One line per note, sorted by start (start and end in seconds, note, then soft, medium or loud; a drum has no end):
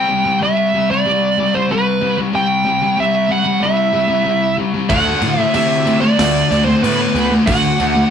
0.00 0.37 G5 loud
0.08 0.24 C3 medium
0.08 0.23 G3 medium
0.25 0.40 C3 medium
0.25 0.40 G3 medium
0.41 0.70 C3 medium
0.41 0.70 G3 loud
0.41 0.91 E5 loud
0.74 0.89 C3 medium
0.74 0.89 G3 loud
0.90 1.05 C3 medium
0.90 1.05 G3 medium
0.90 1.56 D5 loud
1.06 1.34 C3 medium
1.06 1.34 G3 medium
1.38 1.53 C3 medium
1.38 1.53 G3 medium
1.54 1.68 C3 medium
1.54 1.69 G3 medium
1.54 1.70 C5 medium
1.69 1.98 C3 medium
1.69 1.98 G3 loud
1.69 2.16 B4 medium
2.01 2.17 C3 medium
2.01 2.16 G3 medium
2.18 2.32 C3 medium
2.18 2.33 G3 medium
2.33 2.62 C3 medium
2.33 2.62 G3 medium
2.33 3.00 G5 loud
2.65 2.81 C3 medium
2.65 2.81 G3 medium
2.82 2.96 C3 medium
2.82 2.97 G3 medium
2.97 3.26 C3 medium
2.97 3.26 G3 loud
2.97 3.32 E5 loud
3.29 3.44 C3 medium
3.29 3.43 G3 loud
3.29 3.63 F#5 loud
3.44 3.59 C3 medium
3.44 3.60 G3 medium
3.60 3.90 C3 medium
3.60 3.90 G3 medium
3.60 4.54 E5 medium
3.65 4.56 E4 medium
3.92 4.07 C3 medium
3.92 4.07 G3 medium
4.08 4.23 C3 medium
4.08 4.23 G3 medium
4.24 4.54 C3 medium
4.24 4.54 G3 medium
4.57 4.73 C3 medium
4.57 4.73 G3 medium
4.74 4.89 C3 medium
4.74 4.89 G3 medium
4.89 5.12 D2 loud
4.89 5.20 D3 loud
4.89 5.20 A3 loud
4.89 5.20 D4 loud
4.89 5.36 F#4 medium
4.89 5.41 F#5 medium
4.89 kick loud
4.89 crash loud
5.22 5.44 A2 medium
5.22 5.37 D3 medium
5.22 5.37 A3 medium
5.22 crash medium
5.36 5.54 D3 medium
5.36 5.54 A3 medium
5.36 5.50 E4 medium
5.41 5.54 E5 medium
5.54 5.99 C3 medium
5.54 5.84 D3 medium
5.54 5.84 A3 loud
5.54 5.99 E4 medium
5.54 6.01 E5 loud
5.54 crash loud
5.86 6.01 D3 medium
5.86 6.01 A3 loud
5.86 crash medium
6.01 6.17 D3 medium
6.01 6.17 A3 medium
6.01 6.63 D4 medium
6.01 6.62 D5 medium
6.18 6.41 D2 loud
6.18 6.47 D3 medium
6.18 6.48 A3 medium
6.18 snare loud
6.18 crash loud
6.51 6.73 D2 loud
6.51 6.66 D3 medium
6.51 6.65 A3 medium
6.51 snare soft
6.51 crash medium
6.64 6.82 D3 medium
6.64 6.83 A3 medium
6.64 6.83 C4 medium
6.64 6.82 C5 medium
6.82 7.05 A2 medium
6.82 7.12 D3 medium
6.82 7.12 A3 medium
6.82 7.31 B3 medium
6.82 7.31 B4 medium
6.82 crash loud
7.14 7.37 D2 medium
7.14 7.30 D3 medium
7.14 7.29 A3 medium
7.14 crash medium
7.31 7.46 D3 medium
7.31 7.46 A3 loud
7.46 7.70 D2 loud
7.46 7.76 D3 medium
7.46 7.77 A3 medium
7.46 8.07 F#4 loud
7.46 8.10 F#5 medium
7.46 kick loud
7.46 crash loud
7.80 8.02 D2 medium
7.80 7.94 D3 medium
7.80 7.94 A3 medium
7.80 crash medium
7.95 8.10 D3 medium
7.95 8.10 A3 medium